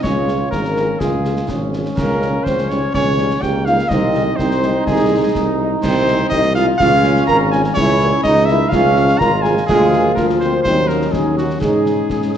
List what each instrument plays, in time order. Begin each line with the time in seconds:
0.03 tuba C#2, euphonium C#4, trombone section F4, cornet C#5, flute section C#5, concert bass drum, snare
0.28 french horn section G#3 F4 G#4, snare
0.51 tuba G#1, euphonium A#3, trombone section C#4, cornet A#4, flute section A#4, concert bass drum, snare
0.64 snare
0.76 french horn section G#3 F4 G#4, snare
0.99 tuba C#2, euphonium G#3, trombone section F4, cornet G#4, flute section G#4, concert bass drum, snare
1.25 french horn section G#3 F4 G#4, snare
1.36 snare
1.48 tuba G#1, trombone section C#4, concert bass drum, snare
1.73 french horn section G#3 F4 G#4, snare
1.85 snare
1.96 tuba C#2, euphonium A#3, cornet A#4, flute section A#4, concert bass drum, snare, crash
2.20 french horn section G3 D#4, snare
2.44 tuba C#2, euphonium C4, cornet C5, flute section C5, concert bass drum, snare
2.58 snare
2.69 french horn section G3 D#4, euphonium C#4, cornet C#5, flute section C#5, snare
2.94 tuba C#2, euphonium C#4, flute section C#5, cornet C#5, concert bass drum, snare
3.18 french horn section G3 D#4, snare
3.31 snare
3.42 tuba C#2, trombone section A#3, euphonium G4, cornet G5, flute section G5, concert bass drum, snare
3.65 french horn section G3 D#4, euphonium F4, cornet F5, flute section F5, snare
3.79 snare
3.89 tuba C2, trombone section C4, euphonium D#4, cornet D#5, flute section D#5, concert bass drum, snare
4.14 french horn section G#3 D#4, snare
4.36 tuba C2, euphonium C4, trombone section D#4, cornet C5, flute section C5, concert bass drum, snare
4.51 snare
4.63 french horn section G#3 D#4, snare
4.86 tuba C2, euphonium G#3, cornet G#4, flute section G#4, concert bass drum, snare
5.11 french horn section G#3 D#4
5.35 tuba C2, concert bass drum, snare
5.59 french horn section G#3 D#4
5.82 tuba C2, euphonium C4, cornet C5, flute section C5, concert bass drum, snare, crash
6.08 french horn section G#3 D#4, snare
6.30 tuba C2, euphonium D#4, cornet D#5, flute section D#5, concert bass drum, snare
6.43 snare
6.55 french horn section G#3 D#4, euphonium F4, cornet F5, flute section F5, snare
6.78 tuba C#2, trombone section C#4, euphonium F4, cornet F5, flute section F5, concert bass drum, snare
7.04 french horn section G#3 C#4 F4, snare
7.16 snare
7.27 tuba G#1, euphonium A#4, cornet A#5, flute section A#5, concert bass drum, snare
7.51 french horn section G#3 C#4 F4, euphonium G#4, cornet G#5, flute section G#5, snare
7.64 snare
7.74 tuba C#2, trombone section E4, cornet C#5, flute section C#5, concert bass drum, snare
7.78 euphonium C#4
7.99 french horn section G3 A#3 E4, snare
8.23 tuba C#2, trombone section D#4, euphonium D#4, cornet D#5, flute section D#5, concert bass drum, snare
8.36 snare
8.45 french horn section G3 A#3 E4, cornet E5, flute section E5, snare
8.51 euphonium E4
8.69 tuba C#2, cornet F5, flute section F5, concert bass drum, snare
8.73 trombone section C#4, euphonium F4
8.96 french horn section F3 G#3 F4, snare
9.08 snare
9.18 tuba G#1, trombone section F4, euphonium A#4, cornet A#5, flute section A#5, concert bass drum, snare
9.42 french horn section F3 F4, euphonium G#4, cornet G#5, flute section G#5, snare
9.46 french horn section G#3
9.57 snare
9.66 tuba D2, french horn section F3 A#3 F4, euphonium G#3, trombone section F4, cornet G#4, flute section G#4, concert bass drum, snare, crash
9.93 snare
10.15 tuba D2, french horn section F3 A#3 F4, euphonium A#3, cornet A#4, flute section A#4, concert bass drum, snare
10.29 snare
10.40 euphonium C4, cornet C5, flute section C5, snare
10.63 tuba D#2, french horn section F#3 C#4 D#4, euphonium C4, trombone section D#4, cornet C5, flute section C5, concert bass drum, snare
10.88 cornet A#4, flute section A#4, snare
10.92 euphonium A#3
11.01 snare
11.12 tuba D#2, euphonium G#3, cornet G#4, flute section G#4, concert bass drum, snare
11.37 euphonium F#3, cornet F#4, flute section F#4, snare
11.50 snare
11.60 tuba G#2, french horn section G#3 C#4 D#4, euphonium G#3, trombone section D#4, cornet G#4, flute section G#4, concert bass drum, snare
11.86 snare
12.10 tuba G#2, trombone section C#4, concert bass drum, snare
12.22 snare
12.34 snare